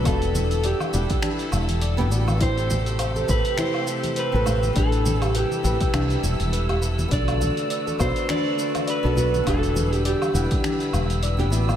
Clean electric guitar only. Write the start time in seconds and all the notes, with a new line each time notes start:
0.07 A4
0.66 G4
2.42 C5
3.31 B4
3.60 C5
4.19 B4
4.78 A4
5.24 G4
5.37 G4
7.13 D5
8.01 C5
8.31 D5
8.90 B4
9.48 A4
9.94 G4
10.07 G4